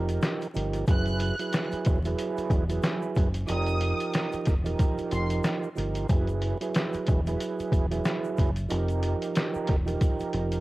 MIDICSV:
0, 0, Header, 1, 6, 480
1, 0, Start_track
1, 0, Tempo, 652174
1, 645, Time_signature, 4, 2, 24, 8
1, 7804, End_track
2, 0, Start_track
2, 0, Title_t, "Violin section"
2, 0, Program_c, 0, 48
2, 650, Note_on_c, 0, 90, 114
2, 1239, Note_off_c, 0, 90, 0
2, 2560, Note_on_c, 0, 87, 117
2, 3154, Note_off_c, 0, 87, 0
2, 3767, Note_on_c, 0, 84, 81
2, 3893, Note_off_c, 0, 84, 0
2, 7804, End_track
3, 0, Start_track
3, 0, Title_t, "Tonewheel organ"
3, 0, Program_c, 1, 16
3, 0, Note_on_c, 1, 53, 94
3, 0, Note_on_c, 1, 63, 91
3, 0, Note_on_c, 1, 67, 90
3, 0, Note_on_c, 1, 70, 106
3, 343, Note_off_c, 1, 53, 0
3, 346, Note_off_c, 1, 63, 0
3, 348, Note_off_c, 1, 67, 0
3, 350, Note_off_c, 1, 70, 0
3, 394, Note_on_c, 1, 53, 74
3, 399, Note_on_c, 1, 63, 69
3, 403, Note_on_c, 1, 67, 71
3, 409, Note_on_c, 1, 70, 89
3, 623, Note_off_c, 1, 53, 0
3, 626, Note_off_c, 1, 63, 0
3, 628, Note_off_c, 1, 67, 0
3, 631, Note_off_c, 1, 70, 0
3, 654, Note_on_c, 1, 54, 99
3, 658, Note_on_c, 1, 64, 80
3, 663, Note_on_c, 1, 68, 88
3, 668, Note_on_c, 1, 71, 98
3, 996, Note_off_c, 1, 54, 0
3, 998, Note_off_c, 1, 64, 0
3, 1001, Note_off_c, 1, 68, 0
3, 1003, Note_off_c, 1, 71, 0
3, 1023, Note_on_c, 1, 54, 97
3, 1028, Note_on_c, 1, 64, 90
3, 1033, Note_on_c, 1, 68, 76
3, 1038, Note_on_c, 1, 71, 99
3, 1459, Note_off_c, 1, 54, 0
3, 1462, Note_off_c, 1, 64, 0
3, 1464, Note_off_c, 1, 68, 0
3, 1466, Note_off_c, 1, 71, 0
3, 1508, Note_on_c, 1, 54, 100
3, 1513, Note_on_c, 1, 64, 89
3, 1518, Note_on_c, 1, 68, 86
3, 1523, Note_on_c, 1, 71, 111
3, 1942, Note_off_c, 1, 54, 0
3, 1944, Note_off_c, 1, 64, 0
3, 1947, Note_off_c, 1, 68, 0
3, 1949, Note_off_c, 1, 71, 0
3, 1977, Note_on_c, 1, 54, 102
3, 1982, Note_on_c, 1, 64, 92
3, 1987, Note_on_c, 1, 68, 88
3, 1992, Note_on_c, 1, 71, 107
3, 2416, Note_off_c, 1, 54, 0
3, 2419, Note_off_c, 1, 64, 0
3, 2421, Note_off_c, 1, 68, 0
3, 2424, Note_off_c, 1, 71, 0
3, 2554, Note_on_c, 1, 53, 95
3, 2559, Note_on_c, 1, 63, 83
3, 2564, Note_on_c, 1, 67, 86
3, 2568, Note_on_c, 1, 70, 109
3, 3341, Note_off_c, 1, 53, 0
3, 3344, Note_off_c, 1, 63, 0
3, 3346, Note_off_c, 1, 67, 0
3, 3348, Note_off_c, 1, 70, 0
3, 3415, Note_on_c, 1, 53, 96
3, 3420, Note_on_c, 1, 63, 90
3, 3424, Note_on_c, 1, 67, 90
3, 3430, Note_on_c, 1, 70, 104
3, 4184, Note_off_c, 1, 53, 0
3, 4186, Note_off_c, 1, 63, 0
3, 4189, Note_off_c, 1, 67, 0
3, 4191, Note_off_c, 1, 70, 0
3, 4231, Note_on_c, 1, 53, 77
3, 4237, Note_on_c, 1, 63, 69
3, 4242, Note_on_c, 1, 67, 72
3, 4247, Note_on_c, 1, 70, 89
3, 4462, Note_off_c, 1, 53, 0
3, 4465, Note_off_c, 1, 63, 0
3, 4468, Note_off_c, 1, 67, 0
3, 4470, Note_off_c, 1, 70, 0
3, 4490, Note_on_c, 1, 54, 101
3, 4496, Note_on_c, 1, 64, 81
3, 4501, Note_on_c, 1, 68, 89
3, 4506, Note_on_c, 1, 71, 96
3, 4834, Note_off_c, 1, 54, 0
3, 4837, Note_off_c, 1, 64, 0
3, 4840, Note_off_c, 1, 68, 0
3, 4842, Note_off_c, 1, 71, 0
3, 4861, Note_on_c, 1, 54, 95
3, 4865, Note_on_c, 1, 64, 90
3, 4871, Note_on_c, 1, 68, 80
3, 4875, Note_on_c, 1, 71, 98
3, 5298, Note_off_c, 1, 54, 0
3, 5300, Note_off_c, 1, 64, 0
3, 5303, Note_off_c, 1, 68, 0
3, 5305, Note_off_c, 1, 71, 0
3, 5347, Note_on_c, 1, 54, 104
3, 5352, Note_on_c, 1, 64, 87
3, 5358, Note_on_c, 1, 68, 91
3, 5363, Note_on_c, 1, 71, 110
3, 5781, Note_off_c, 1, 54, 0
3, 5784, Note_off_c, 1, 64, 0
3, 5787, Note_off_c, 1, 68, 0
3, 5789, Note_off_c, 1, 71, 0
3, 5817, Note_on_c, 1, 54, 102
3, 5822, Note_on_c, 1, 64, 91
3, 5827, Note_on_c, 1, 68, 87
3, 5832, Note_on_c, 1, 71, 109
3, 6256, Note_off_c, 1, 54, 0
3, 6258, Note_off_c, 1, 64, 0
3, 6261, Note_off_c, 1, 68, 0
3, 6264, Note_off_c, 1, 71, 0
3, 6393, Note_on_c, 1, 53, 90
3, 6398, Note_on_c, 1, 63, 87
3, 6402, Note_on_c, 1, 67, 84
3, 6408, Note_on_c, 1, 70, 115
3, 7181, Note_off_c, 1, 53, 0
3, 7183, Note_off_c, 1, 63, 0
3, 7185, Note_off_c, 1, 67, 0
3, 7188, Note_off_c, 1, 70, 0
3, 7253, Note_on_c, 1, 53, 93
3, 7258, Note_on_c, 1, 63, 91
3, 7264, Note_on_c, 1, 67, 88
3, 7269, Note_on_c, 1, 70, 106
3, 7804, Note_off_c, 1, 53, 0
3, 7804, Note_off_c, 1, 63, 0
3, 7804, Note_off_c, 1, 67, 0
3, 7804, Note_off_c, 1, 70, 0
3, 7804, End_track
4, 0, Start_track
4, 0, Title_t, "Fingered electric bass"
4, 0, Program_c, 2, 33
4, 0, Note_on_c, 2, 29, 95
4, 125, Note_off_c, 2, 29, 0
4, 410, Note_on_c, 2, 31, 93
4, 606, Note_off_c, 2, 31, 0
4, 647, Note_on_c, 2, 30, 107
4, 961, Note_off_c, 2, 30, 0
4, 1373, Note_on_c, 2, 28, 104
4, 1568, Note_off_c, 2, 28, 0
4, 1842, Note_on_c, 2, 28, 93
4, 2041, Note_off_c, 2, 28, 0
4, 2331, Note_on_c, 2, 30, 100
4, 2526, Note_off_c, 2, 30, 0
4, 2569, Note_on_c, 2, 29, 113
4, 2882, Note_off_c, 2, 29, 0
4, 3293, Note_on_c, 2, 28, 91
4, 3488, Note_off_c, 2, 28, 0
4, 3770, Note_on_c, 2, 29, 97
4, 3966, Note_off_c, 2, 29, 0
4, 4249, Note_on_c, 2, 31, 93
4, 4445, Note_off_c, 2, 31, 0
4, 4487, Note_on_c, 2, 30, 111
4, 4801, Note_off_c, 2, 30, 0
4, 5213, Note_on_c, 2, 28, 106
4, 5408, Note_off_c, 2, 28, 0
4, 5682, Note_on_c, 2, 28, 92
4, 5882, Note_off_c, 2, 28, 0
4, 6171, Note_on_c, 2, 30, 98
4, 6367, Note_off_c, 2, 30, 0
4, 6410, Note_on_c, 2, 29, 115
4, 6723, Note_off_c, 2, 29, 0
4, 7133, Note_on_c, 2, 28, 87
4, 7328, Note_off_c, 2, 28, 0
4, 7611, Note_on_c, 2, 29, 94
4, 7804, Note_off_c, 2, 29, 0
4, 7804, End_track
5, 0, Start_track
5, 0, Title_t, "Muted fingered electric bass strokes"
5, 1270, Note_on_c, 9, 29, 47
5, 1344, Note_off_c, 9, 29, 0
5, 1749, Note_on_c, 9, 29, 47
5, 1823, Note_off_c, 9, 29, 0
5, 3191, Note_on_c, 9, 29, 48
5, 3264, Note_off_c, 9, 29, 0
5, 3671, Note_on_c, 9, 29, 49
5, 3745, Note_off_c, 9, 29, 0
5, 5110, Note_on_c, 9, 29, 48
5, 5184, Note_off_c, 9, 29, 0
5, 5590, Note_on_c, 9, 29, 49
5, 5664, Note_off_c, 9, 29, 0
5, 7031, Note_on_c, 9, 29, 47
5, 7105, Note_off_c, 9, 29, 0
5, 7511, Note_on_c, 9, 29, 47
5, 7585, Note_off_c, 9, 29, 0
5, 7804, End_track
6, 0, Start_track
6, 0, Title_t, "Drums"
6, 64, Note_on_c, 9, 42, 54
6, 65, Note_on_c, 9, 82, 54
6, 138, Note_off_c, 9, 42, 0
6, 138, Note_off_c, 9, 82, 0
6, 161, Note_on_c, 9, 82, 77
6, 167, Note_on_c, 9, 38, 123
6, 167, Note_on_c, 9, 42, 90
6, 235, Note_off_c, 9, 82, 0
6, 240, Note_off_c, 9, 38, 0
6, 240, Note_off_c, 9, 42, 0
6, 304, Note_on_c, 9, 82, 50
6, 309, Note_on_c, 9, 42, 35
6, 378, Note_off_c, 9, 82, 0
6, 383, Note_off_c, 9, 42, 0
6, 400, Note_on_c, 9, 82, 53
6, 416, Note_on_c, 9, 42, 72
6, 473, Note_off_c, 9, 82, 0
6, 489, Note_off_c, 9, 42, 0
6, 540, Note_on_c, 9, 42, 55
6, 545, Note_on_c, 9, 82, 51
6, 613, Note_off_c, 9, 42, 0
6, 618, Note_off_c, 9, 82, 0
6, 641, Note_on_c, 9, 82, 66
6, 645, Note_on_c, 9, 36, 125
6, 646, Note_on_c, 9, 42, 103
6, 714, Note_off_c, 9, 82, 0
6, 718, Note_off_c, 9, 36, 0
6, 720, Note_off_c, 9, 42, 0
6, 777, Note_on_c, 9, 42, 37
6, 788, Note_on_c, 9, 82, 50
6, 851, Note_off_c, 9, 42, 0
6, 862, Note_off_c, 9, 82, 0
6, 883, Note_on_c, 9, 42, 87
6, 956, Note_off_c, 9, 42, 0
6, 1026, Note_on_c, 9, 42, 57
6, 1030, Note_on_c, 9, 82, 45
6, 1099, Note_off_c, 9, 42, 0
6, 1103, Note_off_c, 9, 82, 0
6, 1124, Note_on_c, 9, 42, 97
6, 1126, Note_on_c, 9, 82, 72
6, 1134, Note_on_c, 9, 38, 122
6, 1198, Note_off_c, 9, 42, 0
6, 1199, Note_off_c, 9, 82, 0
6, 1208, Note_off_c, 9, 38, 0
6, 1263, Note_on_c, 9, 82, 51
6, 1272, Note_on_c, 9, 42, 37
6, 1336, Note_off_c, 9, 82, 0
6, 1345, Note_off_c, 9, 42, 0
6, 1360, Note_on_c, 9, 42, 78
6, 1369, Note_on_c, 9, 82, 55
6, 1371, Note_on_c, 9, 36, 94
6, 1433, Note_off_c, 9, 42, 0
6, 1442, Note_off_c, 9, 82, 0
6, 1445, Note_off_c, 9, 36, 0
6, 1507, Note_on_c, 9, 82, 54
6, 1510, Note_on_c, 9, 42, 51
6, 1581, Note_off_c, 9, 82, 0
6, 1584, Note_off_c, 9, 42, 0
6, 1608, Note_on_c, 9, 42, 91
6, 1612, Note_on_c, 9, 82, 67
6, 1681, Note_off_c, 9, 42, 0
6, 1685, Note_off_c, 9, 82, 0
6, 1746, Note_on_c, 9, 82, 54
6, 1753, Note_on_c, 9, 42, 37
6, 1820, Note_off_c, 9, 82, 0
6, 1827, Note_off_c, 9, 42, 0
6, 1840, Note_on_c, 9, 36, 96
6, 1845, Note_on_c, 9, 42, 67
6, 1848, Note_on_c, 9, 82, 52
6, 1913, Note_off_c, 9, 36, 0
6, 1919, Note_off_c, 9, 42, 0
6, 1922, Note_off_c, 9, 82, 0
6, 1984, Note_on_c, 9, 42, 55
6, 1984, Note_on_c, 9, 82, 51
6, 2057, Note_off_c, 9, 42, 0
6, 2058, Note_off_c, 9, 82, 0
6, 2081, Note_on_c, 9, 82, 78
6, 2087, Note_on_c, 9, 38, 127
6, 2087, Note_on_c, 9, 42, 91
6, 2154, Note_off_c, 9, 82, 0
6, 2160, Note_off_c, 9, 38, 0
6, 2161, Note_off_c, 9, 42, 0
6, 2224, Note_on_c, 9, 82, 50
6, 2298, Note_off_c, 9, 82, 0
6, 2319, Note_on_c, 9, 82, 52
6, 2329, Note_on_c, 9, 36, 90
6, 2336, Note_on_c, 9, 42, 73
6, 2393, Note_off_c, 9, 82, 0
6, 2403, Note_off_c, 9, 36, 0
6, 2410, Note_off_c, 9, 42, 0
6, 2459, Note_on_c, 9, 42, 55
6, 2463, Note_on_c, 9, 82, 51
6, 2533, Note_off_c, 9, 42, 0
6, 2537, Note_off_c, 9, 82, 0
6, 2560, Note_on_c, 9, 82, 66
6, 2565, Note_on_c, 9, 42, 105
6, 2633, Note_off_c, 9, 82, 0
6, 2639, Note_off_c, 9, 42, 0
6, 2698, Note_on_c, 9, 42, 37
6, 2706, Note_on_c, 9, 82, 51
6, 2771, Note_off_c, 9, 42, 0
6, 2780, Note_off_c, 9, 82, 0
6, 2803, Note_on_c, 9, 42, 84
6, 2877, Note_off_c, 9, 42, 0
6, 2946, Note_on_c, 9, 42, 58
6, 2947, Note_on_c, 9, 82, 45
6, 3020, Note_off_c, 9, 42, 0
6, 3021, Note_off_c, 9, 82, 0
6, 3043, Note_on_c, 9, 82, 73
6, 3044, Note_on_c, 9, 42, 99
6, 3054, Note_on_c, 9, 38, 115
6, 3117, Note_off_c, 9, 82, 0
6, 3118, Note_off_c, 9, 42, 0
6, 3128, Note_off_c, 9, 38, 0
6, 3182, Note_on_c, 9, 82, 53
6, 3191, Note_on_c, 9, 42, 37
6, 3256, Note_off_c, 9, 82, 0
6, 3265, Note_off_c, 9, 42, 0
6, 3279, Note_on_c, 9, 42, 76
6, 3289, Note_on_c, 9, 38, 32
6, 3289, Note_on_c, 9, 82, 54
6, 3291, Note_on_c, 9, 36, 92
6, 3353, Note_off_c, 9, 42, 0
6, 3363, Note_off_c, 9, 38, 0
6, 3363, Note_off_c, 9, 82, 0
6, 3364, Note_off_c, 9, 36, 0
6, 3427, Note_on_c, 9, 82, 53
6, 3429, Note_on_c, 9, 42, 48
6, 3501, Note_off_c, 9, 82, 0
6, 3503, Note_off_c, 9, 42, 0
6, 3528, Note_on_c, 9, 42, 91
6, 3529, Note_on_c, 9, 36, 94
6, 3533, Note_on_c, 9, 82, 67
6, 3601, Note_off_c, 9, 42, 0
6, 3602, Note_off_c, 9, 36, 0
6, 3607, Note_off_c, 9, 82, 0
6, 3667, Note_on_c, 9, 82, 54
6, 3672, Note_on_c, 9, 42, 38
6, 3740, Note_off_c, 9, 82, 0
6, 3745, Note_off_c, 9, 42, 0
6, 3764, Note_on_c, 9, 42, 70
6, 3768, Note_on_c, 9, 82, 53
6, 3838, Note_off_c, 9, 42, 0
6, 3842, Note_off_c, 9, 82, 0
6, 3903, Note_on_c, 9, 42, 56
6, 3904, Note_on_c, 9, 82, 51
6, 3976, Note_off_c, 9, 42, 0
6, 3978, Note_off_c, 9, 82, 0
6, 4001, Note_on_c, 9, 82, 80
6, 4007, Note_on_c, 9, 38, 125
6, 4007, Note_on_c, 9, 42, 87
6, 4074, Note_off_c, 9, 82, 0
6, 4080, Note_off_c, 9, 38, 0
6, 4080, Note_off_c, 9, 42, 0
6, 4144, Note_on_c, 9, 82, 49
6, 4218, Note_off_c, 9, 82, 0
6, 4239, Note_on_c, 9, 82, 53
6, 4256, Note_on_c, 9, 42, 73
6, 4313, Note_off_c, 9, 82, 0
6, 4330, Note_off_c, 9, 42, 0
6, 4380, Note_on_c, 9, 42, 53
6, 4384, Note_on_c, 9, 82, 52
6, 4453, Note_off_c, 9, 42, 0
6, 4457, Note_off_c, 9, 82, 0
6, 4481, Note_on_c, 9, 82, 65
6, 4485, Note_on_c, 9, 36, 127
6, 4486, Note_on_c, 9, 42, 100
6, 4555, Note_off_c, 9, 82, 0
6, 4558, Note_off_c, 9, 36, 0
6, 4559, Note_off_c, 9, 42, 0
6, 4618, Note_on_c, 9, 42, 36
6, 4627, Note_on_c, 9, 82, 50
6, 4692, Note_off_c, 9, 42, 0
6, 4700, Note_off_c, 9, 82, 0
6, 4724, Note_on_c, 9, 42, 86
6, 4797, Note_off_c, 9, 42, 0
6, 4866, Note_on_c, 9, 42, 56
6, 4870, Note_on_c, 9, 82, 47
6, 4940, Note_off_c, 9, 42, 0
6, 4944, Note_off_c, 9, 82, 0
6, 4965, Note_on_c, 9, 42, 96
6, 4966, Note_on_c, 9, 82, 74
6, 4975, Note_on_c, 9, 38, 121
6, 5038, Note_off_c, 9, 42, 0
6, 5039, Note_off_c, 9, 82, 0
6, 5048, Note_off_c, 9, 38, 0
6, 5102, Note_on_c, 9, 82, 53
6, 5112, Note_on_c, 9, 42, 37
6, 5176, Note_off_c, 9, 82, 0
6, 5185, Note_off_c, 9, 42, 0
6, 5200, Note_on_c, 9, 42, 77
6, 5210, Note_on_c, 9, 82, 56
6, 5211, Note_on_c, 9, 36, 93
6, 5273, Note_off_c, 9, 42, 0
6, 5283, Note_off_c, 9, 82, 0
6, 5285, Note_off_c, 9, 36, 0
6, 5348, Note_on_c, 9, 82, 53
6, 5350, Note_on_c, 9, 42, 47
6, 5422, Note_off_c, 9, 82, 0
6, 5424, Note_off_c, 9, 42, 0
6, 5448, Note_on_c, 9, 42, 95
6, 5454, Note_on_c, 9, 82, 65
6, 5521, Note_off_c, 9, 42, 0
6, 5527, Note_off_c, 9, 82, 0
6, 5587, Note_on_c, 9, 82, 56
6, 5593, Note_on_c, 9, 42, 38
6, 5661, Note_off_c, 9, 82, 0
6, 5666, Note_off_c, 9, 42, 0
6, 5680, Note_on_c, 9, 36, 97
6, 5685, Note_on_c, 9, 42, 69
6, 5689, Note_on_c, 9, 82, 54
6, 5753, Note_off_c, 9, 36, 0
6, 5758, Note_off_c, 9, 42, 0
6, 5763, Note_off_c, 9, 82, 0
6, 5824, Note_on_c, 9, 42, 56
6, 5826, Note_on_c, 9, 82, 51
6, 5897, Note_off_c, 9, 42, 0
6, 5899, Note_off_c, 9, 82, 0
6, 5922, Note_on_c, 9, 82, 78
6, 5926, Note_on_c, 9, 38, 125
6, 5926, Note_on_c, 9, 42, 92
6, 5996, Note_off_c, 9, 82, 0
6, 6000, Note_off_c, 9, 38, 0
6, 6000, Note_off_c, 9, 42, 0
6, 6065, Note_on_c, 9, 82, 50
6, 6139, Note_off_c, 9, 82, 0
6, 6160, Note_on_c, 9, 82, 53
6, 6169, Note_on_c, 9, 36, 85
6, 6176, Note_on_c, 9, 42, 75
6, 6234, Note_off_c, 9, 82, 0
6, 6243, Note_off_c, 9, 36, 0
6, 6250, Note_off_c, 9, 42, 0
6, 6299, Note_on_c, 9, 42, 54
6, 6304, Note_on_c, 9, 82, 52
6, 6373, Note_off_c, 9, 42, 0
6, 6378, Note_off_c, 9, 82, 0
6, 6402, Note_on_c, 9, 82, 65
6, 6406, Note_on_c, 9, 42, 102
6, 6475, Note_off_c, 9, 82, 0
6, 6479, Note_off_c, 9, 42, 0
6, 6538, Note_on_c, 9, 42, 38
6, 6548, Note_on_c, 9, 82, 51
6, 6612, Note_off_c, 9, 42, 0
6, 6621, Note_off_c, 9, 82, 0
6, 6644, Note_on_c, 9, 42, 84
6, 6644, Note_on_c, 9, 82, 45
6, 6717, Note_off_c, 9, 82, 0
6, 6718, Note_off_c, 9, 42, 0
6, 6786, Note_on_c, 9, 42, 55
6, 6790, Note_on_c, 9, 82, 46
6, 6859, Note_off_c, 9, 42, 0
6, 6864, Note_off_c, 9, 82, 0
6, 6885, Note_on_c, 9, 42, 96
6, 6885, Note_on_c, 9, 82, 74
6, 6895, Note_on_c, 9, 38, 116
6, 6958, Note_off_c, 9, 42, 0
6, 6959, Note_off_c, 9, 82, 0
6, 6968, Note_off_c, 9, 38, 0
6, 7023, Note_on_c, 9, 82, 50
6, 7097, Note_off_c, 9, 82, 0
6, 7119, Note_on_c, 9, 42, 80
6, 7129, Note_on_c, 9, 38, 32
6, 7131, Note_on_c, 9, 36, 89
6, 7193, Note_off_c, 9, 42, 0
6, 7203, Note_off_c, 9, 38, 0
6, 7205, Note_off_c, 9, 36, 0
6, 7267, Note_on_c, 9, 82, 53
6, 7270, Note_on_c, 9, 42, 50
6, 7340, Note_off_c, 9, 82, 0
6, 7344, Note_off_c, 9, 42, 0
6, 7368, Note_on_c, 9, 42, 92
6, 7369, Note_on_c, 9, 36, 94
6, 7372, Note_on_c, 9, 82, 66
6, 7442, Note_off_c, 9, 42, 0
6, 7443, Note_off_c, 9, 36, 0
6, 7446, Note_off_c, 9, 82, 0
6, 7505, Note_on_c, 9, 82, 55
6, 7514, Note_on_c, 9, 42, 37
6, 7579, Note_off_c, 9, 82, 0
6, 7587, Note_off_c, 9, 42, 0
6, 7605, Note_on_c, 9, 42, 67
6, 7679, Note_off_c, 9, 42, 0
6, 7744, Note_on_c, 9, 42, 54
6, 7744, Note_on_c, 9, 82, 53
6, 7804, Note_off_c, 9, 42, 0
6, 7804, Note_off_c, 9, 82, 0
6, 7804, End_track
0, 0, End_of_file